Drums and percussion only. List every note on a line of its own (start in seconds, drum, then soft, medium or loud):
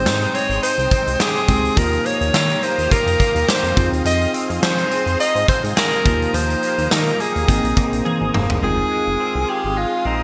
0.06 snare loud
0.22 closed hi-hat medium
0.35 closed hi-hat medium
0.50 closed hi-hat soft
0.63 closed hi-hat loud
0.79 closed hi-hat soft
0.91 kick medium
0.91 closed hi-hat medium
1.07 closed hi-hat medium
1.20 snare loud
1.36 closed hi-hat medium
1.48 kick medium
1.48 closed hi-hat medium
1.65 closed hi-hat soft
1.77 kick loud
1.77 closed hi-hat medium
1.93 closed hi-hat soft
2.06 closed hi-hat medium
2.21 closed hi-hat medium
2.34 snare loud
2.50 closed hi-hat soft
2.63 closed hi-hat medium
2.79 closed hi-hat medium
2.91 kick medium
2.91 closed hi-hat loud
3.07 closed hi-hat medium
3.20 kick medium
3.20 closed hi-hat medium
3.36 closed hi-hat medium
3.49 snare loud
3.64 closed hi-hat medium
3.77 kick loud
3.77 closed hi-hat medium
3.93 closed hi-hat soft
4.05 closed hi-hat loud
4.21 closed hi-hat medium
4.34 closed hi-hat medium
4.50 closed hi-hat medium
4.63 snare loud
4.79 closed hi-hat soft
4.91 closed hi-hat medium
5.07 closed hi-hat soft
5.20 closed hi-hat medium
5.36 closed hi-hat soft
5.48 kick medium
5.48 closed hi-hat medium
5.64 closed hi-hat medium
5.77 snare loud
5.93 closed hi-hat medium
6.06 kick loud
6.06 closed hi-hat medium
6.22 closed hi-hat soft
6.34 closed hi-hat medium
6.50 closed hi-hat soft
6.63 closed hi-hat medium
6.78 closed hi-hat medium
6.91 snare loud
6.91 tambourine medium
7.07 closed hi-hat soft
7.20 closed hi-hat medium
7.36 closed hi-hat soft
7.48 kick medium
7.48 closed hi-hat loud
7.64 closed hi-hat medium
7.77 kick medium
7.77 closed hi-hat medium
7.93 closed hi-hat medium
8.06 high tom medium
8.34 mid tom medium
8.50 floor tom medium